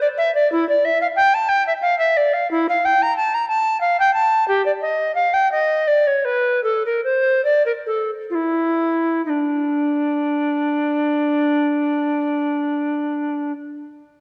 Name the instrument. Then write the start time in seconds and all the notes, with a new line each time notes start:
recorder
0.01 D5
0.17 E5
0.34 D5
0.52 E4
0.69 D5
0.84 E5
1.01 F5
1.16 G5
1.34 A5
1.48 G5
1.66 E5
1.81 F5
1.98 E5
2.17 D5
2.33 F5
2.51 E4
2.69 F5
2.85 G5
3.02 A#5
3.16 A5
3.34 A#5
3.48 A5
3.80 F5
3.99 G5
4.13 A5
4.48 G4
4.65 D5
4.81 D#5
5.15 F5
5.33 G5
5.51 D#5
5.87 D5
6.07 C#5
6.25 B4
6.63 A4
6.85 A#4
7.04 C5
7.44 D5
7.65 A#4
7.86 A4
8.30 F4
8.35 E4
9.25 D#4
9.29 D4